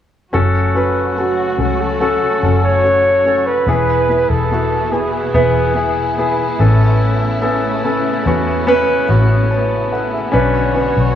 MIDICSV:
0, 0, Header, 1, 5, 480
1, 0, Start_track
1, 0, Key_signature, 3, "minor"
1, 0, Tempo, 833333
1, 196, Time_signature, 4, 2, 24, 8
1, 6423, End_track
2, 0, Start_track
2, 0, Title_t, "Flugelhorn"
2, 0, Program_c, 0, 56
2, 690, Note_on_c, 0, 66, 70
2, 1044, Note_on_c, 0, 69, 69
2, 1053, Note_off_c, 0, 66, 0
2, 1518, Note_off_c, 0, 69, 0
2, 1521, Note_on_c, 0, 73, 90
2, 1997, Note_on_c, 0, 71, 75
2, 2005, Note_off_c, 0, 73, 0
2, 2475, Note_on_c, 0, 69, 75
2, 2483, Note_off_c, 0, 71, 0
2, 2832, Note_on_c, 0, 68, 66
2, 2841, Note_off_c, 0, 69, 0
2, 2952, Note_off_c, 0, 68, 0
2, 2956, Note_on_c, 0, 68, 59
2, 3773, Note_off_c, 0, 68, 0
2, 6423, End_track
3, 0, Start_track
3, 0, Title_t, "Grand piano"
3, 0, Program_c, 1, 0
3, 189, Note_on_c, 1, 61, 72
3, 193, Note_on_c, 1, 66, 73
3, 195, Note_on_c, 1, 69, 91
3, 294, Control_c, 1, 64, 127
3, 420, Note_off_c, 1, 61, 0
3, 423, Note_off_c, 1, 66, 0
3, 424, Note_off_c, 1, 69, 0
3, 428, Note_on_c, 1, 61, 58
3, 432, Note_on_c, 1, 66, 57
3, 438, Note_on_c, 1, 71, 70
3, 660, Note_off_c, 1, 61, 0
3, 662, Note_off_c, 1, 66, 0
3, 665, Note_off_c, 1, 71, 0
3, 677, Note_on_c, 1, 61, 47
3, 682, Note_on_c, 1, 66, 42
3, 682, Note_on_c, 1, 69, 55
3, 900, Note_off_c, 1, 61, 0
3, 907, Note_off_c, 1, 66, 0
3, 907, Note_off_c, 1, 69, 0
3, 908, Note_on_c, 1, 61, 53
3, 916, Note_on_c, 1, 66, 47
3, 918, Note_on_c, 1, 69, 63
3, 1140, Note_off_c, 1, 61, 0
3, 1144, Note_off_c, 1, 66, 0
3, 1145, Note_off_c, 1, 69, 0
3, 1153, Note_on_c, 1, 61, 66
3, 1157, Note_on_c, 1, 66, 68
3, 1160, Note_on_c, 1, 69, 80
3, 1383, Note_off_c, 1, 61, 0
3, 1385, Note_off_c, 1, 66, 0
3, 1386, Note_off_c, 1, 69, 0
3, 1399, Note_on_c, 1, 66, 46
3, 1400, Note_on_c, 1, 61, 55
3, 1406, Note_on_c, 1, 69, 61
3, 1625, Note_off_c, 1, 61, 0
3, 1626, Note_off_c, 1, 66, 0
3, 1629, Note_off_c, 1, 69, 0
3, 1633, Note_on_c, 1, 61, 47
3, 1637, Note_on_c, 1, 66, 46
3, 1639, Note_on_c, 1, 69, 58
3, 1863, Note_off_c, 1, 61, 0
3, 1865, Note_off_c, 1, 66, 0
3, 1866, Note_off_c, 1, 69, 0
3, 1875, Note_on_c, 1, 61, 51
3, 1878, Note_on_c, 1, 66, 43
3, 1884, Note_on_c, 1, 69, 59
3, 2104, Note_off_c, 1, 61, 0
3, 2105, Note_off_c, 1, 66, 0
3, 2108, Note_off_c, 1, 69, 0
3, 2116, Note_on_c, 1, 59, 66
3, 2120, Note_on_c, 1, 52, 47
3, 2122, Note_on_c, 1, 64, 67
3, 2124, Control_c, 1, 64, 0
3, 2125, Note_on_c, 1, 68, 77
3, 2223, Control_c, 1, 64, 127
3, 2344, Note_off_c, 1, 59, 0
3, 2347, Note_off_c, 1, 64, 0
3, 2349, Note_off_c, 1, 68, 0
3, 2356, Note_on_c, 1, 59, 57
3, 2358, Note_on_c, 1, 64, 49
3, 2362, Note_on_c, 1, 68, 58
3, 2584, Note_off_c, 1, 59, 0
3, 2585, Note_off_c, 1, 64, 0
3, 2587, Note_off_c, 1, 68, 0
3, 2600, Note_on_c, 1, 59, 45
3, 2605, Note_on_c, 1, 64, 45
3, 2608, Note_on_c, 1, 66, 52
3, 2815, Note_off_c, 1, 52, 0
3, 2824, Note_off_c, 1, 59, 0
3, 2829, Note_off_c, 1, 64, 0
3, 2830, Note_off_c, 1, 66, 0
3, 2832, Note_on_c, 1, 59, 52
3, 2837, Note_on_c, 1, 64, 51
3, 2839, Note_on_c, 1, 68, 55
3, 3062, Note_off_c, 1, 59, 0
3, 3065, Note_off_c, 1, 64, 0
3, 3065, Note_off_c, 1, 68, 0
3, 3076, Note_on_c, 1, 59, 81
3, 3079, Note_on_c, 1, 64, 67
3, 3082, Note_on_c, 1, 71, 81
3, 3300, Note_off_c, 1, 59, 0
3, 3304, Note_off_c, 1, 64, 0
3, 3307, Note_off_c, 1, 71, 0
3, 3308, Note_on_c, 1, 59, 54
3, 3313, Note_on_c, 1, 64, 48
3, 3316, Note_on_c, 1, 68, 62
3, 3540, Note_off_c, 1, 59, 0
3, 3543, Note_off_c, 1, 64, 0
3, 3544, Note_off_c, 1, 68, 0
3, 3558, Note_on_c, 1, 59, 62
3, 3563, Note_on_c, 1, 64, 62
3, 3567, Note_on_c, 1, 68, 71
3, 3785, Note_off_c, 1, 59, 0
3, 3787, Note_off_c, 1, 64, 0
3, 3790, Note_off_c, 1, 68, 0
3, 3797, Note_on_c, 1, 59, 67
3, 3800, Note_on_c, 1, 45, 54
3, 3800, Note_on_c, 1, 61, 60
3, 3802, Note_on_c, 1, 69, 73
3, 3805, Control_c, 1, 64, 0
3, 3918, Control_c, 1, 64, 127
3, 4252, Note_off_c, 1, 59, 0
3, 4254, Note_off_c, 1, 61, 0
3, 4255, Note_off_c, 1, 69, 0
3, 4272, Note_on_c, 1, 59, 63
3, 4274, Note_on_c, 1, 61, 55
3, 4276, Note_on_c, 1, 69, 70
3, 4495, Note_off_c, 1, 45, 0
3, 4502, Note_off_c, 1, 59, 0
3, 4503, Note_off_c, 1, 61, 0
3, 4504, Note_off_c, 1, 69, 0
3, 4519, Note_on_c, 1, 59, 62
3, 4521, Note_on_c, 1, 61, 56
3, 4526, Note_on_c, 1, 69, 67
3, 4746, Note_off_c, 1, 59, 0
3, 4747, Note_off_c, 1, 61, 0
3, 4749, Note_off_c, 1, 69, 0
3, 4760, Note_on_c, 1, 59, 70
3, 4761, Note_on_c, 1, 61, 63
3, 4763, Note_on_c, 1, 66, 73
3, 4984, Note_off_c, 1, 59, 0
3, 4987, Note_off_c, 1, 61, 0
3, 4988, Note_off_c, 1, 66, 0
3, 4993, Note_on_c, 1, 59, 91
3, 4996, Note_on_c, 1, 61, 83
3, 5002, Note_on_c, 1, 71, 107
3, 5223, Note_off_c, 1, 59, 0
3, 5224, Note_off_c, 1, 61, 0
3, 5227, Note_off_c, 1, 71, 0
3, 5232, Note_on_c, 1, 59, 67
3, 5237, Note_on_c, 1, 61, 60
3, 5240, Note_on_c, 1, 66, 70
3, 5462, Note_off_c, 1, 59, 0
3, 5465, Note_off_c, 1, 61, 0
3, 5466, Note_off_c, 1, 66, 0
3, 5477, Note_on_c, 1, 81, 49
3, 5482, Note_on_c, 1, 73, 40
3, 5705, Note_off_c, 1, 81, 0
3, 5707, Note_off_c, 1, 73, 0
3, 5716, Note_on_c, 1, 78, 54
3, 5720, Note_on_c, 1, 69, 42
3, 5830, Note_off_c, 1, 78, 0
3, 5832, Note_off_c, 1, 69, 0
3, 5835, Note_on_c, 1, 76, 45
3, 5840, Note_on_c, 1, 68, 41
3, 5943, Note_on_c, 1, 61, 89
3, 5949, Note_on_c, 1, 47, 54
3, 5950, Note_on_c, 1, 62, 74
3, 5953, Note_on_c, 1, 71, 88
3, 5964, Control_c, 1, 64, 0
3, 6053, Control_c, 1, 64, 127
3, 6063, Note_off_c, 1, 76, 0
3, 6066, Note_off_c, 1, 68, 0
3, 6178, Note_off_c, 1, 61, 0
3, 6181, Note_off_c, 1, 62, 0
3, 6183, Note_off_c, 1, 71, 0
3, 6186, Note_on_c, 1, 61, 62
3, 6190, Note_on_c, 1, 62, 61
3, 6193, Note_on_c, 1, 71, 72
3, 6414, Note_off_c, 1, 61, 0
3, 6419, Note_off_c, 1, 62, 0
3, 6422, Note_off_c, 1, 71, 0
3, 6423, Note_off_c, 1, 47, 0
3, 6423, End_track
4, 0, Start_track
4, 0, Title_t, "String section"
4, 0, Program_c, 2, 48
4, 192, Note_on_c, 2, 49, 50
4, 192, Note_on_c, 2, 54, 52
4, 195, Note_on_c, 2, 66, 54
4, 197, Note_on_c, 2, 57, 44
4, 2095, Note_off_c, 2, 49, 0
4, 2095, Note_off_c, 2, 54, 0
4, 2097, Note_off_c, 2, 66, 0
4, 2098, Note_off_c, 2, 57, 0
4, 2112, Note_on_c, 2, 59, 53
4, 2115, Note_on_c, 2, 52, 52
4, 2116, Note_on_c, 2, 64, 61
4, 2117, Note_on_c, 2, 47, 56
4, 3777, Note_off_c, 2, 59, 0
4, 3779, Note_off_c, 2, 52, 0
4, 3780, Note_off_c, 2, 47, 0
4, 3797, Note_on_c, 2, 59, 57
4, 3801, Note_on_c, 2, 49, 59
4, 3801, Note_on_c, 2, 57, 57
4, 5933, Note_off_c, 2, 64, 0
4, 5937, Note_off_c, 2, 49, 0
4, 5937, Note_off_c, 2, 57, 0
4, 5953, Note_on_c, 2, 66, 64
4, 5955, Note_on_c, 2, 73, 51
4, 5956, Note_on_c, 2, 50, 50
4, 6423, Note_off_c, 2, 50, 0
4, 6423, Note_off_c, 2, 59, 0
4, 6423, Note_off_c, 2, 66, 0
4, 6423, Note_off_c, 2, 73, 0
4, 6423, End_track
5, 0, Start_track
5, 0, Title_t, "Fingered electric bass"
5, 0, Program_c, 3, 33
5, 197, Note_on_c, 3, 30, 67
5, 894, Note_off_c, 3, 30, 0
5, 912, Note_on_c, 3, 37, 56
5, 1251, Note_off_c, 3, 37, 0
5, 1399, Note_on_c, 3, 30, 65
5, 2095, Note_off_c, 3, 30, 0
5, 2111, Note_on_c, 3, 28, 68
5, 2451, Note_off_c, 3, 28, 0
5, 2475, Note_on_c, 3, 28, 75
5, 3053, Note_off_c, 3, 28, 0
5, 3076, Note_on_c, 3, 28, 76
5, 3773, Note_off_c, 3, 28, 0
5, 3799, Note_on_c, 3, 33, 66
5, 4735, Note_off_c, 3, 33, 0
5, 4756, Note_on_c, 3, 40, 64
5, 5093, Note_off_c, 3, 40, 0
5, 5235, Note_on_c, 3, 33, 58
5, 5933, Note_off_c, 3, 33, 0
5, 5954, Note_on_c, 3, 35, 70
5, 6292, Note_off_c, 3, 35, 0
5, 6317, Note_on_c, 3, 35, 63
5, 6423, Note_off_c, 3, 35, 0
5, 6423, End_track
0, 0, End_of_file